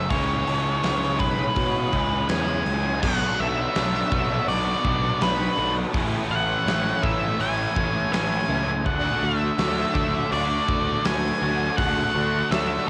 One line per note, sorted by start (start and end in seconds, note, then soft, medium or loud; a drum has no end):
0.00 0.12 C#4 medium
0.00 0.13 C#4 medium
0.00 0.10 F#4 medium
0.00 0.11 A4 medium
0.00 0.10 E5 medium
0.11 0.44 C#2 loud
0.11 1.91 C#3 medium
0.11 1.92 E3 medium
0.11 1.92 G#3 medium
0.11 1.93 C#4 medium
0.11 1.92 E4 medium
0.11 0.48 G#4 medium
0.11 1.24 C#5 medium
0.11 kick loud
0.11 open hi-hat medium
0.46 0.80 C#2 medium
0.46 0.83 E3 medium
0.46 0.84 G#3 medium
0.46 0.85 C#4 medium
0.46 0.84 A5 medium
0.46 open hi-hat medium
0.83 1.17 C#2 medium
0.83 1.55 C#3 medium
0.83 1.21 E3 medium
0.83 1.20 G#3 medium
0.83 1.18 C#4 medium
0.83 1.20 B4 medium
0.83 snare loud
0.83 open hi-hat medium
1.03 snare soft
1.19 1.53 B1 medium
1.19 1.56 E3 medium
1.19 1.57 G#3 medium
1.19 1.58 C#4 medium
1.19 1.57 G#4 medium
1.19 2.62 B4 medium
1.19 kick medium
1.19 open hi-hat medium
1.56 1.90 B2 loud
1.56 2.28 C#3 medium
1.56 1.95 E3 medium
1.56 1.93 G#3 medium
1.56 1.92 C#4 loud
1.56 2.30 C#5 medium
1.56 kick medium
1.56 open hi-hat medium
1.93 2.26 C#2 medium
1.93 2.29 E3 medium
1.93 2.29 G#3 medium
1.93 2.28 C#4 medium
1.93 2.28 E4 medium
1.93 kick medium
1.93 open hi-hat medium
1.97 2.29 C#3 medium
2.29 2.62 E2 medium
2.29 3.01 C#3 medium
2.29 3.01 E3 medium
2.29 3.02 G#3 medium
2.29 2.67 B4 medium
2.29 3.02 G#5 loud
2.29 snare loud
2.29 open hi-hat medium
2.33 3.02 C#4 medium
2.33 3.03 E4 medium
2.66 2.99 C#2 medium
2.66 3.02 E3 medium
2.66 3.01 G#3 medium
2.66 3.00 C#4 medium
2.66 3.02 G#4 medium
2.66 open hi-hat medium
3.02 3.28 B1 loud
3.02 3.76 B2 medium
3.02 3.74 F#3 medium
3.02 3.41 B3 medium
3.02 3.40 D4 medium
3.02 3.38 F#4 loud
3.02 3.39 G#4 loud
3.02 3.40 F#5 loud
3.02 kick loud
3.02 crash loud
3.39 3.65 B1 medium
3.39 3.76 B3 medium
3.39 3.77 D4 medium
3.39 3.78 F#4 medium
3.39 4.13 A4 medium
3.39 4.48 E5 loud
3.75 4.01 B1 medium
3.75 4.46 B2 medium
3.75 4.49 F#3 medium
3.75 4.15 B3 medium
3.75 4.13 D4 medium
3.75 5.21 C#5 medium
3.75 snare loud
3.75 open hi-hat medium
3.79 4.11 F#4 medium
3.94 snare soft
4.11 4.38 B1 medium
4.11 5.92 B2 medium
4.11 5.93 F#3 medium
4.11 5.92 B3 medium
4.11 4.50 D4 medium
4.11 4.51 F#4 medium
4.11 5.24 A4 medium
4.11 kick loud
4.16 4.50 B3 medium
4.48 4.74 B1 medium
4.48 5.22 B2 loud
4.48 5.20 F#3 medium
4.48 4.87 B3 loud
4.48 4.86 D4 loud
4.48 5.24 D5 medium
4.48 5.24 C#6 medium
4.48 open hi-hat medium
4.52 4.84 F#4 loud
4.85 5.10 B1 loud
4.85 5.58 F#3 medium
4.85 5.21 B3 medium
4.85 5.22 D4 medium
4.85 5.23 F#4 medium
4.85 kick medium
5.21 5.47 B1 medium
5.21 5.92 F#3 medium
5.21 5.59 B3 medium
5.21 5.58 D4 medium
5.21 5.56 F#4 loud
5.21 5.58 B4 medium
5.21 5.73 B4 medium
5.21 snare loud
5.21 open hi-hat medium
5.57 5.83 B1 medium
5.57 5.93 F#3 medium
5.57 5.93 B3 medium
5.57 5.93 D4 medium
5.57 5.92 F#4 medium
5.57 5.94 A4 medium
5.93 6.20 A1 medium
5.93 6.67 A2 medium
5.93 6.65 E3 medium
5.93 6.33 A3 loud
5.93 6.32 C#4 medium
5.93 6.29 E4 medium
5.93 6.30 G#4 loud
5.93 kick loud
5.93 open hi-hat medium
6.30 6.56 A1 medium
6.30 6.67 A3 medium
6.30 6.68 C#4 medium
6.30 6.68 E4 medium
6.30 7.03 A4 medium
6.30 7.06 F#5 loud
6.66 6.92 A1 loud
6.66 7.39 E3 medium
6.66 7.05 A3 medium
6.66 7.04 C#4 medium
6.66 7.01 E4 medium
6.66 7.39 C#5 medium
6.66 snare loud
6.66 open hi-hat medium
6.86 snare soft
7.03 7.29 A1 medium
7.03 8.84 A2 medium
7.03 8.84 E3 medium
7.03 7.41 A3 medium
7.03 7.41 C#4 medium
7.03 7.41 E4 medium
7.03 8.16 A4 medium
7.03 7.41 E5 loud
7.03 kick loud
7.39 7.65 A1 loud
7.39 8.12 A2 loud
7.39 8.10 E3 loud
7.39 7.78 A3 loud
7.39 7.77 C#4 loud
7.39 7.74 E4 loud
7.39 8.16 C#5 medium
7.39 8.12 G#5 loud
7.39 open hi-hat medium
7.75 8.02 A1 loud
7.75 8.13 A3 medium
7.75 8.14 C#4 medium
7.75 8.14 E4 medium
7.75 kick medium
8.11 8.38 A1 medium
8.11 8.83 E3 medium
8.11 8.52 A3 medium
8.11 8.50 C#4 medium
8.11 8.48 E4 medium
8.11 8.49 B4 medium
8.11 8.86 G#5 loud
8.11 snare loud
8.11 open hi-hat medium
8.49 8.86 C#2 medium
8.49 8.86 A3 medium
8.49 8.87 C#4 medium
8.49 8.83 E4 medium
8.49 8.86 A4 medium
8.85 9.12 D2 loud
8.85 9.57 D3 medium
8.85 9.25 A3 medium
8.85 9.23 D4 medium
8.85 9.22 F#4 medium
8.85 9.22 G#4 loud
8.85 9.24 F#5 medium
8.85 kick loud
8.85 open hi-hat medium
9.22 9.49 D2 medium
9.22 9.59 A3 medium
9.22 9.60 D4 medium
9.22 9.60 F#4 medium
9.22 9.95 A4 medium
9.22 10.32 E5 loud
9.58 9.84 D2 medium
9.58 10.30 D3 medium
9.58 9.98 A3 medium
9.58 9.96 D4 medium
9.58 9.94 F#4 medium
9.58 10.32 C#5 medium
9.58 snare loud
9.58 open hi-hat medium
9.78 snare soft
9.95 10.21 D2 loud
9.95 11.76 D3 medium
9.95 10.31 A3 medium
9.95 10.32 D4 medium
9.95 10.33 F#4 medium
9.95 11.08 A4 medium
9.95 kick medium
9.95 snare soft
10.31 10.58 D2 loud
10.31 11.03 D3 loud
10.31 10.70 A3 loud
10.31 10.68 D4 medium
10.31 10.66 F#4 loud
10.31 11.08 D5 medium
10.31 11.08 C#6 medium
10.31 open hi-hat medium
10.67 10.94 D2 loud
10.67 11.05 A3 medium
10.67 11.06 D4 medium
10.67 11.06 F#4 medium
10.67 kick loud
11.04 11.31 D2 loud
11.04 11.76 D3 medium
11.04 11.44 A3 medium
11.04 11.41 D4 medium
11.04 11.39 F#4 medium
11.04 11.42 B4 medium
11.04 11.77 G#5 loud
11.04 snare loud
11.04 open hi-hat medium
11.40 11.68 D2 medium
11.40 11.77 A3 medium
11.40 11.78 D4 medium
11.40 11.79 F#4 medium
11.40 11.78 A4 medium
11.77 12.04 D2 loud
11.77 12.50 D3 medium
11.77 12.16 A3 medium
11.77 12.15 D4 medium
11.77 12.13 F#4 medium
11.77 12.14 G#4 loud
11.77 12.47 F#5 medium
11.77 kick loud
11.77 open hi-hat medium
12.14 12.41 D2 medium
12.14 12.51 A3 medium
12.14 12.52 D4 medium
12.14 12.53 F#4 medium
12.14 12.52 A4 medium
12.51 12.78 D2 medium
12.51 12.90 D3 medium
12.51 12.90 A3 medium
12.51 12.89 D4 medium
12.51 12.87 F#4 medium
12.51 12.89 C#5 medium
12.51 12.88 E5 loud
12.51 snare loud
12.51 open hi-hat medium
12.70 snare soft